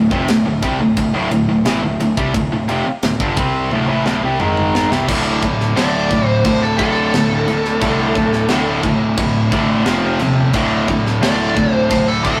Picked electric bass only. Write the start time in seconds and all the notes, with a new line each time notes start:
Already playing: D1
0.12 F1
0.30 D1
0.46 D1
0.63 C2
0.80 D1
0.97 D1
1.14 D1
1.31 D1
1.49 D1
1.66 A1
1.83 D1
2.00 D1
2.17 C2
2.34 D1
2.52 D1
2.69 F1
2.86 muted picked electric bass stroke
3.03 D1
3.20 G1
3.37 C2
3.71 D1
3.88 A1
4.06 D1
4.23 C2
4.39 G#1
4.91 C2
5.09 D1
5.42 D1
5.76 D1
6.11 D1
6.45 D1
6.79 D1
7.14 D1
7.49 D1
7.82 C2
8.16 D1
8.51 D1
8.83 D1
9.18 D1
9.52 A1
9.86 F1
10.20 D#1
10.55 D1
10.88 D1
11.23 D1
11.57 D1
11.91 D1
12.25 D1